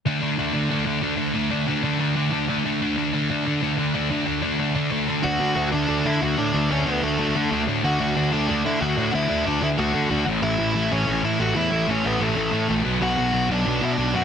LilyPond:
<<
  \new Staff \with { instrumentName = "Lead electric guitar" } { \time 4/4 \key d \major \tempo 4 = 185 r1 | r1 | r1 | r1 |
<fis' fis''>4. <d' d''>4 <e' e''>8 <fis' fis''>8 <d' d''>8~ | <d' d''>8 <cis' cis''>8 <b b'>8 <a a'>2 r8 | <fis' fis''>4. <d' d''>4 <e' e''>8 <fis' fis''>4 | <e' e''>4 <d' d''>8 <e' e''>8 <fis' fis''>4. r8 |
<e' e''>4. <cis' cis''>4 <e' e''>8 <fis' fis''>8 <e' e''>8~ | <e' e''>8 <cis' cis''>8 <b b'>8 <a a'>2 r8 | <fis' fis''>4. <d' d''>4 <e' e''>16 <d' d''>8. <fis' fis''>8 | }
  \new Staff \with { instrumentName = "Distorted electric guitar" } { \time 4/4 \key d \major <d a d'>8 <d a d'>8 <d a d'>8 <d a d'>8 <d a d'>8 <d a d'>8 <d a d'>8 <d a d'>8 | <d a d'>8 <d a d'>8 <d a d'>8 <d a d'>8 <d a d'>8 <d a d'>8 <d a d'>8 <d a d'>8 | <d a d'>8 <d a d'>8 <d a d'>8 <d a d'>8 <d a d'>8 <d a d'>8 <d a d'>8 <d a d'>8 | <d a d'>8 <d a d'>8 <d a d'>8 <d a d'>8 <d a d'>8 <d a d'>8 <d a d'>8 <d a d'>8 |
<d a d'>8 <d a d'>8 <d a d'>8 <d a d'>8 <d a d'>8 <d a d'>8 <d a d'>8 <d a d'>8 | <d a d'>8 <d a d'>8 <d a d'>8 <d a d'>8 <d a d'>8 <d a d'>8 <d a d'>8 <d a d'>8 | <d a d'>8 <d a d'>8 <d a d'>8 <d a d'>8 <d a d'>8 <d a d'>8 <d a d'>8 <d a d'>8 | <d a d'>8 <d a d'>8 <d a d'>8 <d a d'>8 <d a d'>8 <d a d'>8 <d a d'>8 <a, e a>8 |
<a, e a>8 <a, e a>8 <a, e a>8 <a, e a>8 <a, e a>8 <a, e a>8 <a, e a>8 <a, e a>8 | <a, e a>8 <a, e a>8 <a, e a>8 <a, e a>8 <a, e a>8 <a, e a>8 <a, e a>8 <b, fis b>8 | <b, fis b>8 <b, fis b>8 <b, fis b>8 <b, fis b>8 <b, fis b>8 <b, fis b>8 <b, fis b>8 <b, fis b>8 | }
  \new Staff \with { instrumentName = "Picked electric bass" } { \clef bass \time 4/4 \key d \major r1 | r1 | r1 | r1 |
d,8 d,8 d,8 d,8 d,8 d8 d,8 a,8 | d,8 d,8 d,8 d,8 d,8 d8 d,8 a,8 | d,8 d,8 d,8 d,8 d,8 d8 d,8 a,8 | d,8 d,8 d,8 d,8 d,8 d8 d,8 a,,8 |
a,,8 a,,8 a,,8 a,,8 a,,8 a,8 a,,8 e,8 | a,,8 a,,8 a,,8 a,,8 a,,8 a,8 bes,,8 b,,8 | b,,8 b,,8 b,,8 b,,8 b,,8 b,8 b,,8 fis,8 | }
>>